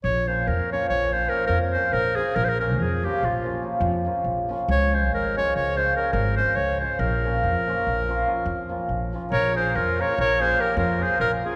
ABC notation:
X:1
M:11/8
L:1/16
Q:1/4=142
K:Bbm
V:1 name="Clarinet"
d2 c2 B2 d2 d2 c2 B2 B2 c2 B2 A2 | B/2 c/2 B B3/2 B/2 A2 =G2 F4 z8 z2 | d2 c2 B2 d2 d2 c2 B2 B2 c2 d2 c2 | B16- B2 z4 |
d2 c2 B2 d2 d2 c2 B2 B2 c2 B2 A2 |]
V:2 name="Trumpet"
z16 z6 | z16 z6 | z16 z6 | z16 z6 |
B2 A2 F2 B2 B2 A2 =G2 F2 A2 F2 F2 |]
V:3 name="Hammered dulcimer"
z2 [F,B,DF]2 z2 [F,B,DF]2 z2 [F,B,DF]2 [F,B,DF]2 z2 [F,B,DF]2 z2 [F,B,DF]2 | z2 [F,B,DF]2 z2 [F,B,DF]2 z2 [F,B,DF]2 [F,B,DF]2 z2 [F,B,DF]2 z2 [F,B,DF]2 | z2 [F,A,DF]2 z2 [F,A,DF]2 z2 [F,A,DF]2 [F,A,DF]2 z2 [F,A,DF]2 z2 [F,A,DF]2 | z2 [F,B,DF]2 z2 [F,B,DF]2 z2 [F,B,DF]2 [F,B,DF]2 z2 [F,B,DF]2 z2 [F,B,DF]2 |
z2 [F,B,DF]2 z2 [F,B,DF]2 z2 [F,B,DF]2 [F,B,DF]2 z2 [F,B,DF]2 z2 [F,B,DF]2 |]
V:4 name="Upright bass" clef=bass
B,,,4 F,,4 B,,,6 F,,4 B,,,4 | B,,,4 F,,4 B,,,6 F,,4 B,,,4 | D,,4 A,,,4 D,,6 A,,,4 D,,4 | B,,,4 F,,4 B,,,6 F,,4 B,,,4 |
B,,,4 F,,4 B,,,6 F,,4 B,,,4 |]